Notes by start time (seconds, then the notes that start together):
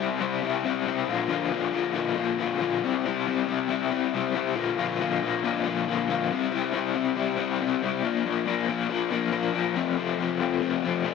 Already playing: C3
0.00 G3 C4 E4
0.20 C3 G3 C4 E4
0.42 C3 G3 C4 E4
0.64 C3 G3 C4 E4
0.87 C3 G3 C4 E4
1.08 A#2 D3 F3 A#3 F4
1.29 A#2 D3 F3 A#3 F4
1.51 A#2 D3 F3 A#3 F4
1.72 A#2 D3 F3 A#3 F4
1.95 A#2 D3 F3 A#3 F4
2.15 A#2 D3 F3 A#3 F4
2.39 A#2 D3 F3 A#3 F4
2.60 A#2 D3 F3 A#3 F4
2.83 C3 G3 C4 E4
3.05 C3 G3 C4 E4
3.27 C3 G3 C4 E4
3.47 C3 G3 C4 E4
3.68 C3 G3 C4 E4
3.91 C3 G3 C4 E4
4.14 C3 G3 C4 E4
4.35 C3 G3 C4 E4
4.55 A#2 D3 F3 A#3 F4
4.78 A#2 D3 F3 A#3 F4
5.00 A#2 D3 F3 A#3 F4
5.22 A#2 D3 F3 A#3 F4
5.43 A#2 D3 F3 A#3 F4
5.65 A#2 D3 F3 A#3 F4
5.88 A#2 D3 F3 A#3 F4
6.09 A#2 D3 F3 A#3 F4
6.32 C3 G3 C4 E4
6.51 C3 G3 C4 E4
6.74 C3 G3 C4 E4
6.95 C3 G3 C4 E4
7.16 C3 G3 C4 E4
7.37 C3 G3 C4 E4
7.61 C3 G3 C4 E4
7.83 C3 G3 C4 E4
8.04 A#2 F3 A#3 D4
8.25 A#2 F3 A#3 D4
8.46 A#2 F3 A#3 D4
8.67 A#2 F3 A#3 D4
8.90 A#2 F3 A#3 D4
9.11 A#2 F3 A#3 D4
9.32 A#2 F3 A#3 D4
9.54 A#2 F3 A#3 D4
9.76 F2 C3 F3 A3 C4
9.98 F2 C3 F3 A3 C4
10.18 F2 C3 F3 A3 C4
10.40 F2 C3 F3 A3 C4
10.62 F2 C3 F3 A3 C4
10.83 F2 C3 F3 A3 C4
11.04 F2 C3 F3 A3 C4